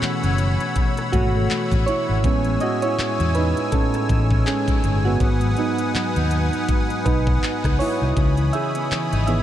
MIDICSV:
0, 0, Header, 1, 8, 480
1, 0, Start_track
1, 0, Tempo, 740741
1, 1452, Time_signature, 4, 2, 24, 8
1, 6110, End_track
2, 0, Start_track
2, 0, Title_t, "Accordion"
2, 0, Program_c, 0, 21
2, 0, Note_on_c, 0, 73, 77
2, 0, Note_on_c, 0, 78, 70
2, 0, Note_on_c, 0, 83, 71
2, 0, Note_on_c, 0, 88, 87
2, 1424, Note_off_c, 0, 83, 0
2, 1431, Note_off_c, 0, 73, 0
2, 1431, Note_off_c, 0, 78, 0
2, 1454, Note_on_c, 0, 73, 84
2, 1454, Note_on_c, 0, 80, 77
2, 3346, Note_off_c, 0, 88, 0
2, 3354, Note_off_c, 0, 73, 0
2, 3372, Note_on_c, 0, 71, 79
2, 3372, Note_on_c, 0, 78, 73
2, 3372, Note_on_c, 0, 87, 88
2, 5267, Note_off_c, 0, 80, 0
2, 5272, Note_off_c, 0, 71, 0
2, 5273, Note_off_c, 0, 78, 0
2, 5291, Note_on_c, 0, 80, 77
2, 5292, Note_on_c, 0, 73, 81
2, 5292, Note_on_c, 0, 83, 76
2, 6110, Note_off_c, 0, 73, 0
2, 6110, Note_off_c, 0, 80, 0
2, 6110, Note_off_c, 0, 83, 0
2, 6110, Note_off_c, 0, 87, 0
2, 6110, End_track
3, 0, Start_track
3, 0, Title_t, "Synth keys"
3, 0, Program_c, 1, 88
3, 0, Control_c, 1, 64, 127
3, 0, Note_on_c, 1, 52, 54
3, 0, Note_on_c, 1, 57, 64
3, 0, Note_on_c, 1, 59, 67
3, 0, Note_on_c, 1, 61, 64
3, 0, Note_on_c, 1, 66, 86
3, 0, Note_on_c, 1, 68, 85
3, 464, Note_off_c, 1, 66, 0
3, 471, Note_off_c, 1, 57, 0
3, 728, Note_on_c, 1, 66, 97
3, 742, Note_on_c, 1, 57, 70
3, 1184, Note_off_c, 1, 66, 0
3, 1191, Note_off_c, 1, 57, 0
3, 1207, Note_on_c, 1, 73, 105
3, 1223, Note_on_c, 1, 64, 76
3, 1454, Note_on_c, 1, 56, 55
3, 1458, Note_off_c, 1, 59, 0
3, 1458, Note_on_c, 1, 59, 53
3, 1459, Control_c, 1, 64, 0
3, 1460, Note_off_c, 1, 52, 0
3, 1461, Note_off_c, 1, 68, 0
3, 1462, Note_off_c, 1, 61, 0
3, 1462, Note_on_c, 1, 61, 63
3, 1590, Control_c, 1, 64, 127
3, 1671, Note_off_c, 1, 64, 0
3, 1690, Note_on_c, 1, 75, 102
3, 1704, Note_off_c, 1, 73, 0
3, 1704, Note_on_c, 1, 66, 88
3, 1787, Note_off_c, 1, 56, 0
3, 1788, Note_off_c, 1, 59, 0
3, 1790, Note_off_c, 1, 61, 0
3, 1828, Note_off_c, 1, 66, 0
3, 1829, Note_on_c, 1, 73, 106
3, 1834, Note_off_c, 1, 75, 0
3, 1843, Note_on_c, 1, 64, 83
3, 2154, Note_off_c, 1, 64, 0
3, 2170, Note_on_c, 1, 71, 92
3, 2181, Note_off_c, 1, 73, 0
3, 2184, Note_on_c, 1, 63, 69
3, 2401, Note_off_c, 1, 63, 0
3, 2409, Note_on_c, 1, 69, 96
3, 2418, Note_off_c, 1, 71, 0
3, 2423, Note_on_c, 1, 61, 76
3, 2864, Note_off_c, 1, 69, 0
3, 2871, Note_off_c, 1, 61, 0
3, 2891, Note_on_c, 1, 68, 88
3, 2904, Note_on_c, 1, 61, 67
3, 3195, Note_off_c, 1, 68, 0
3, 3202, Note_off_c, 1, 61, 0
3, 3215, Note_on_c, 1, 68, 61
3, 3269, Note_off_c, 1, 68, 0
3, 3271, Note_on_c, 1, 66, 79
3, 3284, Note_on_c, 1, 59, 65
3, 3381, Control_c, 1, 64, 0
3, 3484, Control_c, 1, 64, 127
3, 3611, Note_off_c, 1, 59, 0
3, 3615, Note_on_c, 1, 54, 56
3, 3618, Note_on_c, 1, 59, 53
3, 3623, Note_on_c, 1, 63, 67
3, 4205, Note_off_c, 1, 66, 0
3, 4307, Note_off_c, 1, 54, 0
3, 4309, Note_off_c, 1, 59, 0
3, 4311, Note_off_c, 1, 63, 0
3, 4570, Note_on_c, 1, 71, 95
3, 4583, Note_on_c, 1, 63, 69
3, 5025, Note_off_c, 1, 71, 0
3, 5031, Note_off_c, 1, 63, 0
3, 5048, Note_on_c, 1, 73, 99
3, 5061, Note_on_c, 1, 64, 77
3, 5301, Control_c, 1, 64, 0
3, 5422, Control_c, 1, 64, 127
3, 5504, Note_off_c, 1, 73, 0
3, 5510, Note_off_c, 1, 64, 0
3, 5526, Note_on_c, 1, 76, 112
3, 5541, Note_on_c, 1, 68, 84
3, 5990, Note_off_c, 1, 68, 0
3, 5998, Note_off_c, 1, 76, 0
3, 6006, Note_on_c, 1, 76, 103
3, 6012, Note_on_c, 1, 52, 55
3, 6015, Note_on_c, 1, 59, 52
3, 6019, Note_on_c, 1, 51, 59
3, 6021, Note_on_c, 1, 68, 82
3, 6110, Note_off_c, 1, 51, 0
3, 6110, Note_off_c, 1, 52, 0
3, 6110, Note_off_c, 1, 59, 0
3, 6110, Note_off_c, 1, 68, 0
3, 6110, Note_off_c, 1, 76, 0
3, 6110, End_track
4, 0, Start_track
4, 0, Title_t, "Clean electric guitar"
4, 0, Program_c, 2, 27
4, 0, Note_on_c, 2, 47, 93
4, 0, Note_on_c, 2, 57, 59
4, 0, Note_on_c, 2, 61, 65
4, 15, Note_on_c, 2, 52, 68
4, 149, Note_off_c, 2, 61, 0
4, 151, Note_on_c, 2, 61, 75
4, 251, Note_off_c, 2, 52, 0
4, 253, Note_on_c, 2, 52, 66
4, 390, Note_off_c, 2, 61, 0
4, 393, Note_on_c, 2, 61, 71
4, 486, Note_off_c, 2, 47, 0
4, 494, Note_on_c, 2, 47, 82
4, 629, Note_off_c, 2, 52, 0
4, 632, Note_on_c, 2, 52, 62
4, 731, Note_off_c, 2, 61, 0
4, 733, Note_on_c, 2, 61, 72
4, 869, Note_off_c, 2, 57, 0
4, 872, Note_on_c, 2, 57, 63
4, 971, Note_off_c, 2, 52, 0
4, 973, Note_on_c, 2, 52, 69
4, 1109, Note_off_c, 2, 61, 0
4, 1112, Note_on_c, 2, 61, 67
4, 1210, Note_off_c, 2, 52, 0
4, 1213, Note_on_c, 2, 52, 61
4, 1349, Note_off_c, 2, 61, 0
4, 1352, Note_on_c, 2, 61, 64
4, 1451, Note_on_c, 2, 45, 84
4, 1453, Note_off_c, 2, 47, 0
4, 1587, Note_off_c, 2, 52, 0
4, 1590, Note_on_c, 2, 56, 63
4, 1609, Note_off_c, 2, 57, 0
4, 1688, Note_off_c, 2, 61, 0
4, 1691, Note_on_c, 2, 64, 70
4, 1831, Note_on_c, 2, 61, 66
4, 1930, Note_off_c, 2, 56, 0
4, 1932, Note_on_c, 2, 56, 74
4, 2063, Note_off_c, 2, 64, 0
4, 2071, Note_on_c, 2, 64, 70
4, 2170, Note_off_c, 2, 56, 0
4, 2173, Note_on_c, 2, 56, 62
4, 2304, Note_off_c, 2, 64, 0
4, 2311, Note_on_c, 2, 64, 69
4, 2404, Note_off_c, 2, 45, 0
4, 2412, Note_on_c, 2, 45, 86
4, 2548, Note_off_c, 2, 56, 0
4, 2551, Note_on_c, 2, 56, 58
4, 2644, Note_off_c, 2, 64, 0
4, 2652, Note_on_c, 2, 64, 68
4, 2783, Note_off_c, 2, 61, 0
4, 2791, Note_on_c, 2, 61, 62
4, 2889, Note_off_c, 2, 56, 0
4, 2892, Note_on_c, 2, 56, 71
4, 3023, Note_off_c, 2, 64, 0
4, 3031, Note_on_c, 2, 64, 65
4, 3129, Note_off_c, 2, 56, 0
4, 3131, Note_on_c, 2, 56, 60
4, 3262, Note_off_c, 2, 64, 0
4, 3270, Note_on_c, 2, 64, 62
4, 3368, Note_off_c, 2, 45, 0
4, 3370, Note_on_c, 2, 44, 91
4, 3427, Note_off_c, 2, 61, 0
4, 3427, Note_off_c, 2, 64, 0
4, 3508, Note_off_c, 2, 56, 0
4, 3510, Note_on_c, 2, 54, 61
4, 3611, Note_on_c, 2, 63, 67
4, 3753, Note_on_c, 2, 59, 58
4, 3845, Note_off_c, 2, 54, 0
4, 3853, Note_on_c, 2, 54, 73
4, 3989, Note_off_c, 2, 63, 0
4, 3992, Note_on_c, 2, 63, 67
4, 4085, Note_off_c, 2, 54, 0
4, 4092, Note_on_c, 2, 54, 65
4, 4229, Note_off_c, 2, 63, 0
4, 4231, Note_on_c, 2, 63, 68
4, 4324, Note_off_c, 2, 44, 0
4, 4332, Note_on_c, 2, 44, 84
4, 4464, Note_off_c, 2, 54, 0
4, 4472, Note_on_c, 2, 54, 60
4, 4569, Note_off_c, 2, 63, 0
4, 4572, Note_on_c, 2, 63, 71
4, 4709, Note_off_c, 2, 59, 0
4, 4712, Note_on_c, 2, 59, 63
4, 4805, Note_off_c, 2, 54, 0
4, 4812, Note_on_c, 2, 54, 65
4, 4949, Note_off_c, 2, 63, 0
4, 4952, Note_on_c, 2, 63, 66
4, 5044, Note_off_c, 2, 54, 0
4, 5052, Note_on_c, 2, 54, 57
4, 5188, Note_off_c, 2, 63, 0
4, 5190, Note_on_c, 2, 63, 63
4, 5291, Note_on_c, 2, 49, 89
4, 5347, Note_off_c, 2, 44, 0
4, 5347, Note_off_c, 2, 54, 0
4, 5429, Note_on_c, 2, 52, 58
4, 5449, Note_off_c, 2, 63, 0
4, 5531, Note_on_c, 2, 63, 67
4, 5668, Note_off_c, 2, 59, 0
4, 5670, Note_on_c, 2, 59, 63
4, 5768, Note_off_c, 2, 52, 0
4, 5771, Note_on_c, 2, 52, 74
4, 5903, Note_off_c, 2, 63, 0
4, 5910, Note_on_c, 2, 63, 74
4, 6007, Note_off_c, 2, 52, 0
4, 6009, Note_on_c, 2, 52, 66
4, 6110, Note_off_c, 2, 49, 0
4, 6110, Note_off_c, 2, 52, 0
4, 6110, Note_off_c, 2, 59, 0
4, 6110, Note_off_c, 2, 63, 0
4, 6110, End_track
5, 0, Start_track
5, 0, Title_t, "Fingered electric bass"
5, 0, Program_c, 3, 33
5, 151, Note_on_c, 3, 30, 96
5, 359, Note_off_c, 3, 30, 0
5, 733, Note_on_c, 3, 32, 102
5, 940, Note_off_c, 3, 32, 0
5, 1112, Note_on_c, 3, 33, 86
5, 1198, Note_off_c, 3, 33, 0
5, 1353, Note_on_c, 3, 32, 84
5, 1439, Note_off_c, 3, 32, 0
5, 1452, Note_on_c, 3, 33, 101
5, 1659, Note_off_c, 3, 33, 0
5, 2072, Note_on_c, 3, 40, 91
5, 2279, Note_off_c, 3, 40, 0
5, 2653, Note_on_c, 3, 33, 97
5, 2860, Note_off_c, 3, 33, 0
5, 3133, Note_on_c, 3, 31, 96
5, 3340, Note_off_c, 3, 31, 0
5, 3372, Note_on_c, 3, 32, 101
5, 3579, Note_off_c, 3, 32, 0
5, 3992, Note_on_c, 3, 39, 94
5, 4199, Note_off_c, 3, 39, 0
5, 4574, Note_on_c, 3, 35, 93
5, 4780, Note_off_c, 3, 35, 0
5, 4952, Note_on_c, 3, 37, 92
5, 5039, Note_off_c, 3, 37, 0
5, 5193, Note_on_c, 3, 36, 84
5, 5279, Note_off_c, 3, 36, 0
5, 5293, Note_on_c, 3, 37, 105
5, 5500, Note_off_c, 3, 37, 0
5, 5913, Note_on_c, 3, 32, 89
5, 6110, Note_off_c, 3, 32, 0
5, 6110, End_track
6, 0, Start_track
6, 0, Title_t, "Downlifter"
6, 0, Program_c, 4, 103
6, 0, Note_on_c, 4, 60, 78
6, 1451, Note_off_c, 4, 60, 0
6, 6110, End_track
7, 0, Start_track
7, 0, Title_t, "Muted fingered electric bass strokes"
7, 12, Note_on_c, 9, 29, 45
7, 77, Note_off_c, 9, 29, 0
7, 974, Note_on_c, 9, 29, 50
7, 1039, Note_off_c, 9, 29, 0
7, 1932, Note_on_c, 9, 29, 47
7, 1997, Note_off_c, 9, 29, 0
7, 3852, Note_on_c, 9, 29, 44
7, 3917, Note_off_c, 9, 29, 0
7, 4812, Note_on_c, 9, 29, 48
7, 4877, Note_off_c, 9, 29, 0
7, 5773, Note_on_c, 9, 29, 49
7, 5838, Note_off_c, 9, 29, 0
7, 6110, End_track
8, 0, Start_track
8, 0, Title_t, "Drums"
8, 17, Note_on_c, 9, 39, 124
8, 17, Note_on_c, 9, 42, 57
8, 82, Note_off_c, 9, 39, 0
8, 82, Note_off_c, 9, 42, 0
8, 152, Note_on_c, 9, 42, 62
8, 217, Note_off_c, 9, 42, 0
8, 248, Note_on_c, 9, 42, 81
8, 313, Note_off_c, 9, 42, 0
8, 391, Note_on_c, 9, 42, 54
8, 456, Note_off_c, 9, 42, 0
8, 490, Note_on_c, 9, 42, 93
8, 492, Note_on_c, 9, 36, 98
8, 555, Note_off_c, 9, 42, 0
8, 556, Note_off_c, 9, 36, 0
8, 631, Note_on_c, 9, 42, 52
8, 638, Note_on_c, 9, 37, 61
8, 696, Note_off_c, 9, 42, 0
8, 703, Note_off_c, 9, 37, 0
8, 732, Note_on_c, 9, 36, 92
8, 734, Note_on_c, 9, 42, 70
8, 797, Note_off_c, 9, 36, 0
8, 798, Note_off_c, 9, 42, 0
8, 976, Note_on_c, 9, 39, 119
8, 978, Note_on_c, 9, 42, 72
8, 1041, Note_off_c, 9, 39, 0
8, 1043, Note_off_c, 9, 42, 0
8, 1111, Note_on_c, 9, 36, 90
8, 1115, Note_on_c, 9, 42, 59
8, 1176, Note_off_c, 9, 36, 0
8, 1180, Note_off_c, 9, 42, 0
8, 1216, Note_on_c, 9, 42, 61
8, 1281, Note_off_c, 9, 42, 0
8, 1452, Note_on_c, 9, 36, 115
8, 1453, Note_on_c, 9, 42, 68
8, 1516, Note_off_c, 9, 36, 0
8, 1518, Note_off_c, 9, 42, 0
8, 1584, Note_on_c, 9, 42, 48
8, 1649, Note_off_c, 9, 42, 0
8, 1687, Note_on_c, 9, 42, 58
8, 1752, Note_off_c, 9, 42, 0
8, 1829, Note_on_c, 9, 42, 85
8, 1894, Note_off_c, 9, 42, 0
8, 1939, Note_on_c, 9, 42, 57
8, 1940, Note_on_c, 9, 39, 121
8, 2004, Note_off_c, 9, 42, 0
8, 2005, Note_off_c, 9, 39, 0
8, 2074, Note_on_c, 9, 42, 64
8, 2139, Note_off_c, 9, 42, 0
8, 2169, Note_on_c, 9, 42, 81
8, 2234, Note_off_c, 9, 42, 0
8, 2314, Note_on_c, 9, 42, 55
8, 2379, Note_off_c, 9, 42, 0
8, 2411, Note_on_c, 9, 42, 93
8, 2412, Note_on_c, 9, 36, 100
8, 2476, Note_off_c, 9, 42, 0
8, 2477, Note_off_c, 9, 36, 0
8, 2553, Note_on_c, 9, 42, 52
8, 2560, Note_on_c, 9, 37, 58
8, 2617, Note_off_c, 9, 42, 0
8, 2625, Note_off_c, 9, 37, 0
8, 2653, Note_on_c, 9, 36, 96
8, 2655, Note_on_c, 9, 42, 70
8, 2718, Note_off_c, 9, 36, 0
8, 2720, Note_off_c, 9, 42, 0
8, 2790, Note_on_c, 9, 36, 92
8, 2854, Note_off_c, 9, 36, 0
8, 2896, Note_on_c, 9, 39, 111
8, 2898, Note_on_c, 9, 42, 69
8, 2961, Note_off_c, 9, 39, 0
8, 2963, Note_off_c, 9, 42, 0
8, 3031, Note_on_c, 9, 36, 93
8, 3034, Note_on_c, 9, 42, 57
8, 3095, Note_off_c, 9, 36, 0
8, 3099, Note_off_c, 9, 42, 0
8, 3135, Note_on_c, 9, 42, 66
8, 3199, Note_off_c, 9, 42, 0
8, 3371, Note_on_c, 9, 36, 122
8, 3371, Note_on_c, 9, 42, 65
8, 3436, Note_off_c, 9, 36, 0
8, 3436, Note_off_c, 9, 42, 0
8, 3505, Note_on_c, 9, 42, 49
8, 3570, Note_off_c, 9, 42, 0
8, 3607, Note_on_c, 9, 42, 59
8, 3672, Note_off_c, 9, 42, 0
8, 3748, Note_on_c, 9, 42, 84
8, 3813, Note_off_c, 9, 42, 0
8, 3858, Note_on_c, 9, 42, 58
8, 3859, Note_on_c, 9, 39, 119
8, 3923, Note_off_c, 9, 39, 0
8, 3923, Note_off_c, 9, 42, 0
8, 3993, Note_on_c, 9, 42, 63
8, 4058, Note_off_c, 9, 42, 0
8, 4088, Note_on_c, 9, 42, 81
8, 4153, Note_off_c, 9, 42, 0
8, 4233, Note_on_c, 9, 42, 56
8, 4297, Note_off_c, 9, 42, 0
8, 4332, Note_on_c, 9, 36, 100
8, 4332, Note_on_c, 9, 42, 91
8, 4396, Note_off_c, 9, 42, 0
8, 4397, Note_off_c, 9, 36, 0
8, 4473, Note_on_c, 9, 42, 51
8, 4538, Note_off_c, 9, 42, 0
8, 4573, Note_on_c, 9, 36, 97
8, 4575, Note_on_c, 9, 42, 69
8, 4638, Note_off_c, 9, 36, 0
8, 4640, Note_off_c, 9, 42, 0
8, 4710, Note_on_c, 9, 36, 101
8, 4775, Note_off_c, 9, 36, 0
8, 4819, Note_on_c, 9, 39, 117
8, 4820, Note_on_c, 9, 42, 67
8, 4883, Note_off_c, 9, 39, 0
8, 4885, Note_off_c, 9, 42, 0
8, 4952, Note_on_c, 9, 36, 86
8, 4957, Note_on_c, 9, 42, 54
8, 4958, Note_on_c, 9, 37, 92
8, 5016, Note_off_c, 9, 36, 0
8, 5022, Note_off_c, 9, 37, 0
8, 5022, Note_off_c, 9, 42, 0
8, 5056, Note_on_c, 9, 46, 71
8, 5121, Note_off_c, 9, 46, 0
8, 5292, Note_on_c, 9, 36, 120
8, 5293, Note_on_c, 9, 42, 71
8, 5357, Note_off_c, 9, 36, 0
8, 5358, Note_off_c, 9, 42, 0
8, 5426, Note_on_c, 9, 42, 49
8, 5491, Note_off_c, 9, 42, 0
8, 5529, Note_on_c, 9, 42, 61
8, 5594, Note_off_c, 9, 42, 0
8, 5670, Note_on_c, 9, 42, 87
8, 5735, Note_off_c, 9, 42, 0
8, 5779, Note_on_c, 9, 39, 122
8, 5779, Note_on_c, 9, 42, 58
8, 5843, Note_off_c, 9, 42, 0
8, 5844, Note_off_c, 9, 39, 0
8, 5914, Note_on_c, 9, 42, 65
8, 5978, Note_off_c, 9, 42, 0
8, 6010, Note_on_c, 9, 42, 79
8, 6075, Note_off_c, 9, 42, 0
8, 6110, End_track
0, 0, End_of_file